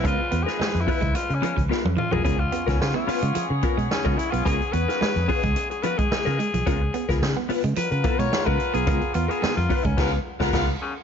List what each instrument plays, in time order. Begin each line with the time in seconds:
Already playing: horn section F3 G#3 B3 B4
0.04 fingered electric bass C#2, clean electric guitar B3 C#4 F4 A#4, tenor saxophone F4, kick, closed hi-hat
0.20 muted clean electric guitar stroke
0.31 fingered electric bass E2, clean electric guitar B3, muted clean electric guitar stroke, closed hi-hat
0.43 tenor saxophone G#4, clean electric guitar A#4
0.47 clean electric guitar B3 F4, snare, closed hi-hat
0.59 clean electric guitar G#3, muted clean electric guitar stroke, muted fingered electric bass stroke, snare
0.74 fingered electric bass F2, muted clean electric guitar stroke, closed hi-hat
0.81 tenor saxophone E4
0.87 clean electric guitar B3 F4 B4, kick, open hi-hat
1.01 fingered electric bass C#2, clean electric guitar G#3, muted clean electric guitar stroke, kick, closed hi-hat
1.15 tenor saxophone F4, muted clean electric guitar stroke, muted fingered electric bass stroke, closed hi-hat
1.29 fingered electric bass C#3, muted clean electric guitar stroke, closed hi-hat
1.35 tenor saxophone C#4
1.42 clean electric guitar F3 B3 F4 A#4, closed hi-hat
1.56 fingered electric bass C#2, clean electric guitar F3, muted clean electric guitar stroke, kick, closed hi-hat
1.69 clean electric guitar B3 F4 A#4, muted clean electric guitar stroke, muted fingered electric bass stroke, snare
1.85 fingered electric bass F2, high tom
1.97 clean electric guitar E3, tenor saxophone F4, muted clean electric guitar stroke, mid tom
2.11 fingered electric bass B1, clean electric guitar F3 B3 F4 A#4, tenor saxophone G#4, floor tom
2.24 fingered electric bass C#2, clean electric guitar B3 C#4 F4 A#4, horn section B3 C#4 G#4 C#5, tenor saxophone G#4, kick, closed hi-hat
2.39 tenor saxophone F4, muted clean electric guitar stroke
2.52 clean electric guitar B3, muted clean electric guitar stroke, closed hi-hat
2.66 fingered electric bass C#2, clean electric guitar B3 F4 A#4, tenor saxophone C#4, kick, snare, closed hi-hat
2.80 fingered electric bass C#3, tenor saxophone F4, muted clean electric guitar stroke, snare
2.94 clean electric guitar B3, tenor saxophone F4
3.07 clean electric guitar B3 F4 B4, muted clean electric guitar stroke, muted fingered electric bass stroke, open hi-hat
3.22 fingered electric bass C#3, clean electric guitar G#3, muted clean electric guitar stroke, closed hi-hat
3.35 clean electric guitar F3, muted clean electric guitar stroke, muted fingered electric bass stroke, closed hi-hat
3.50 fingered electric bass C#3, muted clean electric guitar stroke
3.63 clean electric guitar B3 F4 A#4, muted clean electric guitar stroke, kick, closed hi-hat
3.78 fingered electric bass B2, clean electric guitar G#3, muted clean electric guitar stroke, closed hi-hat
3.91 tenor saxophone C#4, muted clean electric guitar stroke, snare
4.05 fingered electric bass C#3, clean electric guitar G#3 B3 F4 A#4, kick
4.17 tenor saxophone E4, muted clean electric guitar stroke, closed hi-hat
4.31 fingered electric bass B1, clean electric guitar B3, tenor saxophone F4, muted clean electric guitar stroke, closed hi-hat
4.45 fingered electric bass C#2, clean electric guitar B3 C#4 F4 A#4, tenor saxophone G#4, kick, closed hi-hat
4.61 muted clean electric guitar stroke, closed hi-hat
4.72 fingered electric bass E2, clean electric guitar B3, tenor saxophone B4, muted clean electric guitar stroke, closed hi-hat
4.88 clean electric guitar B3 F4 A#4, snare, closed hi-hat
5.01 clean electric guitar G#3, muted clean electric guitar stroke, muted fingered electric bass stroke, snare
5.15 fingered electric bass F2, muted clean electric guitar stroke, closed hi-hat
5.28 clean electric guitar B3 F4 B4, tenor saxophone G#4, kick, open hi-hat
5.43 fingered electric bass C#2, clean electric guitar G#3, muted clean electric guitar stroke, kick, closed hi-hat
5.55 muted clean electric guitar stroke, closed hi-hat
5.70 tenor saxophone G#4, muted clean electric guitar stroke, closed hi-hat
5.83 clean electric guitar F3 B3 F4 A#4, tenor saxophone B4, closed hi-hat
5.98 clean electric guitar G#3, tenor saxophone G#4, muted clean electric guitar stroke, kick, closed hi-hat
6.11 muted clean electric guitar stroke, muted fingered electric bass stroke, snare
6.25 fingered electric bass C#3, clean electric guitar B3 F4 A#4, closed hi-hat
6.39 clean electric guitar G#3, muted clean electric guitar stroke, closed hi-hat
6.54 fingered electric bass B1, clean electric guitar F3, muted clean electric guitar stroke, closed hi-hat
6.66 fingered electric bass C#2, clean electric guitar B3 C#4 F4 A#4, kick, closed hi-hat
6.82 muted clean electric guitar stroke
6.94 clean electric guitar B3, muted clean electric guitar stroke, closed hi-hat
7.09 fingered electric bass C#2, clean electric guitar B3 F4 A#4, kick, snare, closed hi-hat
7.22 fingered electric bass C#3, muted clean electric guitar stroke, snare
7.37 clean electric guitar B3
7.49 clean electric guitar B3 F4 B4, muted fingered electric bass stroke, muted clean electric guitar stroke, open hi-hat
7.63 fingered electric bass C#3, clean electric guitar G#3, muted clean electric guitar stroke, closed hi-hat
7.76 clean electric guitar F3, horn section B3 F4 A#4 F5, tenor saxophone B4, muted clean electric guitar stroke, muted fingered electric bass stroke, closed hi-hat
7.91 fingered electric bass C#3, tenor saxophone B4, muted clean electric guitar stroke, closed hi-hat
8.04 clean electric guitar B3 F4 A#4, muted clean electric guitar stroke, kick, closed hi-hat
8.18 fingered electric bass B2, clean electric guitar G#3, tenor saxophone C#5, muted clean electric guitar stroke, closed hi-hat
8.32 muted clean electric guitar stroke, snare
8.45 fingered electric bass C#3, clean electric guitar G#3 B3 F4 A#4, tenor saxophone B4, kick
8.59 muted clean electric guitar stroke, closed hi-hat
8.74 fingered electric bass B1, clean electric guitar B3, tenor saxophone G#4, muted clean electric guitar stroke, closed hi-hat
8.87 fingered electric bass C#2, clean electric guitar B3 C#4 F4 A#4, kick, closed hi-hat
9.01 muted clean electric guitar stroke, closed hi-hat
9.14 fingered electric bass E2, clean electric guitar B3, tenor saxophone F4, muted clean electric guitar stroke, closed hi-hat
9.28 clean electric guitar B3 F4 A#4, tenor saxophone G#4, closed hi-hat
9.42 clean electric guitar B3, muted clean electric guitar stroke, muted fingered electric bass stroke, snare
9.57 fingered electric bass F2, tenor saxophone F4, muted clean electric guitar stroke, closed hi-hat
9.69 clean electric guitar B3 F4 B4, kick, open hi-hat
9.84 fingered electric bass C#2, clean electric guitar G#3, tenor saxophone C#4, muted clean electric guitar stroke, kick, closed hi-hat
9.97 fingered electric bass C#2, clean electric guitar B3 F4 B4, horn section B3 F4 A#4 F5, kick, snare, crash
10.40 fingered electric bass C#2, clean electric guitar B3 F4 A#4, horn section B3 F4 A#4 F5, kick, snare
10.53 fingered electric bass C#2, clean electric guitar B3 F4 A#4, horn section B3 F4 A#4 F5, kick, snare, crash
10.81 tenor saxophone C#3